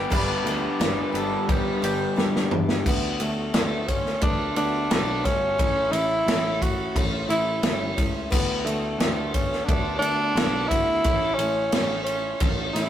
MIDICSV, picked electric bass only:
0, 0, Header, 1, 2, 480
1, 0, Start_track
1, 0, Key_signature, 2, "major"
1, 0, Tempo, 683371
1, 81, Time_signature, 4, 2, 24, 8
1, 9056, End_track
2, 0, Start_track
2, 0, Title_t, "Picked electric bass"
2, 0, Program_c, 0, 34
2, 83, Note_on_c, 0, 31, 90
2, 234, Note_off_c, 0, 31, 0
2, 314, Note_on_c, 0, 38, 95
2, 468, Note_off_c, 0, 38, 0
2, 561, Note_on_c, 0, 31, 75
2, 713, Note_off_c, 0, 31, 0
2, 800, Note_on_c, 0, 31, 89
2, 952, Note_off_c, 0, 31, 0
2, 1041, Note_on_c, 0, 31, 103
2, 1194, Note_off_c, 0, 31, 0
2, 1286, Note_on_c, 0, 31, 82
2, 1437, Note_off_c, 0, 31, 0
2, 1528, Note_on_c, 0, 43, 102
2, 1679, Note_off_c, 0, 43, 0
2, 1767, Note_on_c, 0, 40, 98
2, 1918, Note_off_c, 0, 40, 0
2, 2009, Note_on_c, 0, 38, 88
2, 2219, Note_off_c, 0, 38, 0
2, 2250, Note_on_c, 0, 38, 89
2, 2460, Note_off_c, 0, 38, 0
2, 2486, Note_on_c, 0, 38, 82
2, 2908, Note_off_c, 0, 38, 0
2, 2964, Note_on_c, 0, 38, 100
2, 3176, Note_off_c, 0, 38, 0
2, 3209, Note_on_c, 0, 38, 84
2, 3419, Note_off_c, 0, 38, 0
2, 3454, Note_on_c, 0, 35, 104
2, 3662, Note_off_c, 0, 35, 0
2, 3686, Note_on_c, 0, 31, 91
2, 3898, Note_off_c, 0, 31, 0
2, 3927, Note_on_c, 0, 33, 93
2, 4138, Note_off_c, 0, 33, 0
2, 4155, Note_on_c, 0, 33, 86
2, 4371, Note_off_c, 0, 33, 0
2, 4400, Note_on_c, 0, 33, 87
2, 4824, Note_off_c, 0, 33, 0
2, 4884, Note_on_c, 0, 33, 115
2, 5096, Note_off_c, 0, 33, 0
2, 5120, Note_on_c, 0, 33, 85
2, 5333, Note_off_c, 0, 33, 0
2, 5359, Note_on_c, 0, 31, 107
2, 5573, Note_off_c, 0, 31, 0
2, 5603, Note_on_c, 0, 37, 91
2, 5847, Note_off_c, 0, 37, 0
2, 5847, Note_on_c, 0, 38, 98
2, 6057, Note_off_c, 0, 38, 0
2, 6075, Note_on_c, 0, 38, 100
2, 6289, Note_off_c, 0, 38, 0
2, 6312, Note_on_c, 0, 38, 87
2, 6738, Note_off_c, 0, 38, 0
2, 6803, Note_on_c, 0, 38, 106
2, 7013, Note_off_c, 0, 38, 0
2, 7026, Note_on_c, 0, 38, 84
2, 7244, Note_off_c, 0, 38, 0
2, 7273, Note_on_c, 0, 35, 106
2, 7487, Note_off_c, 0, 35, 0
2, 7521, Note_on_c, 0, 38, 89
2, 7731, Note_off_c, 0, 38, 0
2, 7758, Note_on_c, 0, 33, 87
2, 7969, Note_off_c, 0, 33, 0
2, 7997, Note_on_c, 0, 33, 98
2, 8208, Note_off_c, 0, 33, 0
2, 8239, Note_on_c, 0, 33, 82
2, 8659, Note_off_c, 0, 33, 0
2, 8714, Note_on_c, 0, 33, 102
2, 8926, Note_off_c, 0, 33, 0
2, 8953, Note_on_c, 0, 33, 78
2, 9056, Note_off_c, 0, 33, 0
2, 9056, End_track
0, 0, End_of_file